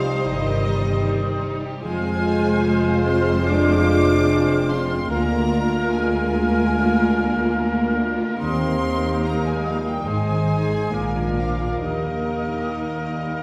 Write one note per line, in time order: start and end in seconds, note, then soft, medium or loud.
0.00 1.87 C3 medium
0.00 0.25 F3 medium
0.00 1.03 G3 medium
0.00 1.53 G3 medium
0.00 1.80 G3 medium
0.00 0.83 C4 medium
0.00 1.80 D#4 medium
0.00 1.87 D#4 medium
0.00 0.64 G4 medium
0.00 1.54 G4 medium
0.00 0.44 C5 medium
0.00 1.52 C5 medium
0.00 1.82 C5 medium
0.00 0.24 D#5 medium
0.00 0.24 F5 medium
0.00 1.58 D#6 medium
0.04 0.24 C4 medium
0.04 1.87 G5 medium
0.24 0.90 G1 medium
0.24 0.90 G2 medium
0.24 1.44 D#3 medium
0.24 0.42 D#4 medium
0.24 1.43 D#5 medium
0.24 1.87 D#5 medium
0.44 0.64 G4 medium
0.44 2.64 C5 medium
0.64 0.84 D#4 medium
0.64 1.87 G4 medium
0.85 1.23 C4 medium
0.85 1.04 C4 medium
1.04 1.23 G3 medium
1.04 1.42 G3 medium
1.24 1.63 C4 soft
1.24 1.44 C4 medium
1.42 1.86 G3 soft
1.42 1.63 D#4 medium
1.62 2.02 C4 medium
1.62 1.83 G4 medium
1.83 5.07 F1 medium
1.83 5.07 F2 medium
1.83 5.73 F3 medium
1.83 3.01 G#3 medium
1.83 5.07 G#3 medium
1.83 2.02 G#3 medium
1.83 5.07 G#3 medium
1.83 5.07 F4 medium
1.83 5.07 C5 medium
1.83 3.01 G#5 medium
1.83 5.07 F6 medium
2.03 2.24 C4 medium
2.03 4.28 C4 soft
2.24 2.44 F4 medium
2.24 4.07 F4 medium
2.44 2.65 C4 medium
2.44 6.35 G#4 medium
2.64 2.85 G#3 medium
2.64 3.87 C5 medium
2.85 3.06 C4 medium
2.85 3.67 F5 medium
3.06 3.47 C4 medium
3.06 3.26 F4 medium
3.06 3.45 G#5 medium
3.06 3.47 C6 medium
3.26 3.47 C4 medium
3.26 5.14 C6 medium
3.47 3.67 G#3 medium
3.47 4.70 D4 medium
3.47 7.37 G#5 medium
3.47 4.70 D6 loud
3.68 3.89 C4 medium
3.68 6.32 F5 medium
3.88 4.09 F4 medium
3.88 5.14 C5 medium
4.09 4.29 C4 medium
4.09 4.48 F4 medium
4.29 4.49 G#3 medium
4.29 4.68 C4 medium
4.49 4.70 C4 medium
4.49 4.87 F4 soft
4.69 5.14 C4 soft
4.69 5.11 C4 medium
4.69 4.90 F4 medium
4.69 5.11 C6 medium
4.89 5.11 C4 medium
4.89 5.71 F4 soft
5.09 8.36 D2 medium
5.09 8.43 D3 medium
5.09 5.29 G#3 medium
5.09 9.76 A#3 medium
5.09 5.92 A#3 medium
5.09 10.08 A#3 medium
5.09 8.09 F4 medium
5.09 8.37 F4 medium
5.09 10.03 A#4 medium
5.09 9.77 A#4 medium
5.09 5.92 A#5 medium
5.09 8.15 F6 medium
5.30 7.54 G#3 soft
5.30 5.52 A#3 medium
5.50 7.35 A#3 soft
5.50 5.72 D4 medium
5.71 5.92 F4 medium
5.71 6.11 F4 soft
5.91 7.98 G#3 medium
5.91 6.12 D4 medium
5.91 6.93 A#4 soft
5.91 7.98 G#5 medium
6.12 6.33 A#3 medium
6.12 7.13 F4 soft
6.32 6.53 G#3 medium
6.32 6.73 F5 soft
6.51 6.73 A#3 medium
6.51 9.87 A#5 soft
6.73 6.93 D4 medium
6.73 8.44 F5 medium
6.93 7.14 F4 medium
6.93 9.24 A#4 soft
7.13 7.35 D4 medium
7.13 8.43 F4 soft
7.34 7.55 A#3 medium
7.34 7.75 A#3 soft
7.54 7.76 G#3 medium
7.54 7.97 G#3 soft
7.76 7.97 A#3 medium
7.76 8.19 A#3 soft
7.95 8.44 G#3 soft
7.95 8.18 D4 soft
8.18 8.61 A#3 soft
8.18 8.40 F4 soft
8.38 10.07 D#2 medium
8.38 10.11 D#3 medium
8.38 8.59 G3 medium
8.38 9.20 C4 medium
8.38 10.89 D#4 medium
8.38 10.09 G4 medium
8.38 9.21 C6 medium
8.38 10.89 D#6 medium
8.59 8.82 A#3 soft
8.59 10.11 A#3 soft
8.80 9.02 D#4 soft
8.80 10.71 D#4 soft
9.02 9.24 G4 soft
9.02 10.11 G4 soft
9.23 9.45 A#3 medium
9.23 9.44 D#4 medium
9.23 10.11 A#4 soft
9.23 9.46 A#5 medium
9.43 9.66 G#3 medium
9.43 9.65 A#3 soft
9.43 10.97 D#5 soft
9.43 9.67 G#5 medium
9.65 9.87 F3 medium
9.65 9.86 G3 soft
9.65 9.87 F5 medium
9.65 10.11 G5 soft
9.87 10.08 G3 soft
9.87 10.07 A#3 soft
9.87 10.08 G5 medium
9.87 10.11 A#5 soft
10.06 10.91 G#1 medium
10.06 10.90 G#2 soft
10.06 10.97 G#2 soft
10.06 11.36 G#3 medium
10.06 10.94 G#3 medium
10.06 10.27 G#3 soft
10.06 10.93 G#3 soft
10.06 10.94 G#4 soft
10.06 10.95 C5 soft
10.06 10.91 C5 soft
10.06 11.37 G#5 medium
10.29 10.97 D#3 soft
10.29 10.50 C4 soft
10.49 10.97 C4 soft
10.49 10.71 D#4 soft
10.71 10.97 D#4 soft
10.71 10.93 G#4 soft
10.92 11.82 A#1 soft
10.92 11.81 A#2 soft
10.92 11.85 A#2 soft
10.92 11.80 F3 soft
10.92 13.43 A#3 soft
10.92 11.13 A#3 soft
10.92 11.82 D4 soft
10.92 11.84 F4 soft
10.92 13.43 A#4 soft
10.92 11.82 D6 soft
11.14 11.86 F3 soft
11.14 11.37 D4 soft
11.36 11.80 F3 soft
11.36 12.04 A#3 soft
11.36 11.59 F4 soft
11.36 11.82 F5 medium
11.60 11.86 D4 soft
11.60 11.82 G#4 soft
11.80 13.43 D#2 soft
11.80 13.43 D#3 soft
11.80 12.03 G3 soft
11.80 13.43 D#4 soft
11.80 12.63 G4 soft
11.80 13.43 D#5 medium
11.80 13.43 D#6 soft
12.05 12.27 A#3 soft
12.05 13.43 A#3 soft
12.27 12.49 D#4 soft
12.27 13.43 D#4 soft
12.49 13.43 G4 soft
12.49 12.72 G4 soft
12.71 12.94 D#4 soft
12.71 13.43 A#4 medium
12.71 13.43 A#4 soft
12.93 13.16 A#3 soft
12.93 13.43 D#5 soft
13.15 13.38 G3 soft
13.15 13.43 G5 soft
13.39 13.43 A#3 soft
13.39 13.43 A#5 soft